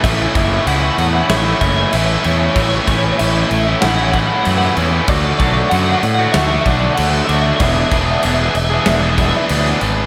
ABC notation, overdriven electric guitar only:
X:1
M:4/4
L:1/16
Q:1/4=95
K:A
V:1 name="Overdriven electric guitar"
[A,,E,A,CE]2 [E,A,CE]2 [A,,E,A,CE] [A,CE]2 [A,CE]2 [A,CE] [E,A,CE]2 [A,,E,A,CE]2 [E,A,CE] [A,CE] | [A,,E,A,CE]2 [E,A,CE]2 [A,,E,A,CE] [A,CE]2 [A,CE]2 [A,CE] [E,A,CE]2 [A,,E,A,CE]2 [E,A,CE] [A,CE] | [D,A,DF]2 [D,A,DF]2 [D,A,DF] [A,DF]2 [A,DF]2 [A,DF] [D,A,DF]2 [D,A,DF]2 [D,A,DF] [A,DF] | [E,B,DG]2 [E,B,DG]2 [E,B,DG] [B,DG]2 [B,DG]2 [B,DG] [E,B,DG]2 [E,B,DG]2 [E,B,DG] [B,DG] |]